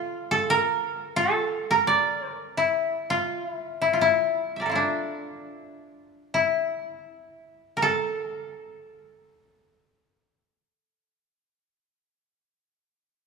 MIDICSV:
0, 0, Header, 1, 2, 480
1, 0, Start_track
1, 0, Tempo, 680272
1, 345, Time_signature, 4, 2, 24, 8
1, 824, Tempo, 706714
1, 2744, Tempo, 777202
1, 4184, Tempo, 749064
1, 5144, Tempo, 712589
1, 8811, End_track
2, 0, Start_track
2, 0, Title_t, "Koto"
2, 0, Program_c, 0, 107
2, 0, Note_on_c, 0, 65, 79
2, 0, Note_on_c, 0, 69, 90
2, 217, Note_off_c, 0, 69, 0
2, 220, Note_on_c, 0, 69, 88
2, 353, Note_on_c, 0, 70, 101
2, 395, Note_off_c, 0, 69, 0
2, 821, Note_on_c, 0, 69, 91
2, 862, Note_off_c, 0, 70, 0
2, 1190, Note_on_c, 0, 70, 82
2, 1230, Note_off_c, 0, 69, 0
2, 1303, Note_on_c, 0, 74, 85
2, 1372, Note_off_c, 0, 65, 0
2, 1608, Note_off_c, 0, 70, 0
2, 1608, Note_off_c, 0, 74, 0
2, 1608, Note_on_c, 0, 70, 85
2, 1779, Note_on_c, 0, 64, 75
2, 2137, Note_on_c, 0, 65, 70
2, 2178, Note_off_c, 0, 64, 0
2, 2390, Note_off_c, 0, 70, 0
2, 2402, Note_off_c, 0, 65, 0
2, 2402, Note_on_c, 0, 64, 70
2, 2622, Note_off_c, 0, 64, 0
2, 2622, Note_on_c, 0, 64, 67
2, 2703, Note_on_c, 0, 65, 51
2, 2743, Note_off_c, 0, 64, 0
2, 2756, Note_on_c, 0, 64, 72
2, 2793, Note_off_c, 0, 65, 0
2, 3095, Note_on_c, 0, 76, 27
2, 3116, Note_on_c, 0, 74, 30
2, 3126, Note_on_c, 0, 70, 33
2, 3153, Note_on_c, 0, 69, 34
2, 3177, Note_on_c, 0, 65, 35
2, 3186, Note_off_c, 0, 64, 0
2, 3188, Note_on_c, 0, 64, 41
2, 3213, Note_on_c, 0, 62, 59
2, 3214, Note_off_c, 0, 76, 0
2, 4105, Note_off_c, 0, 74, 0
2, 4191, Note_off_c, 0, 64, 0
2, 4193, Note_on_c, 0, 64, 75
2, 4232, Note_off_c, 0, 65, 0
2, 4265, Note_off_c, 0, 70, 0
2, 4334, Note_off_c, 0, 69, 0
2, 4731, Note_off_c, 0, 62, 0
2, 5108, Note_on_c, 0, 70, 66
2, 5144, Note_on_c, 0, 69, 90
2, 5184, Note_off_c, 0, 70, 0
2, 5669, Note_off_c, 0, 64, 0
2, 8811, Note_off_c, 0, 69, 0
2, 8811, End_track
0, 0, End_of_file